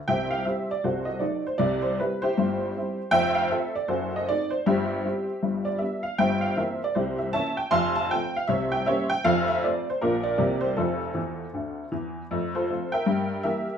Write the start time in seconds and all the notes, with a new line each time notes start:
0.08 C2 C3 C5 E5 G5
0.31 F5
0.45 G3 C4 E4 G4 C5 E5
0.71 D5
0.84 C2 C3 F#4 A4 C5
1.05 D#5
1.19 F#3 A3 D#4 D5
1.47 C5
1.58 C2 C3 D5
1.82 C5
2.00 G3 C4 E4 B4
2.22 E4 G4 C5
2.38 G1 G2
2.76 G3 C4 E4
3.11 F1 F2 C5 E5 G5
3.35 F5
3.51 A3 C4 F4 A4 C5 E5
3.75 D5
3.88 F#1 F#2 F#4 A4 C5
4.16 D#5
4.29 A3 C4 D#4 D5
4.50 C5
4.66 G1 G2 G4 C5 E5
5.05 G3 C4 E4
5.43 G1 G2
5.65 D5
5.78 G3 B3 D4 E5
6.03 F5
6.18 G1 G2 C5 E5 G5
6.41 F5
6.57 E3 A#3 C4 A#4 C5 E5
6.84 D5
6.95 C2 C3 E4 G4 C5
7.18 E5
7.33 E3 A#3 C#4 C#5 E5 A5
7.57 G5
7.71 F1 F2 F5 A5 C6
7.96 A5
8.11 F3 A3 C4 G5
8.36 F5
8.48 C2 C3 C5 C#5 E5
8.72 G5
8.86 G3 A#3 C#4 C5 C#5 E5
9.10 G5
9.24 F1 F2 A4 C5 F5
9.48 E5
9.64 F3 A3 C4 D5
9.90 C5
10.01 A#1 A#2 F3 A#3 D4 F4 A#4
10.23 D5
10.38 C2 C3 E3 A#3 C4 G4 A#4 D5
10.61 C5
10.77 F1 F2 C4 F4 A4
11.14 E2 E3
11.53 D2 D3
11.92 E2 E3
12.31 F2 A3
12.55 F4 A4 C5
12.70 F3 A3 C4
12.92 A#4 E5 G5
13.06 G2
13.43 E3 G3 A#3 G4 A#4 E5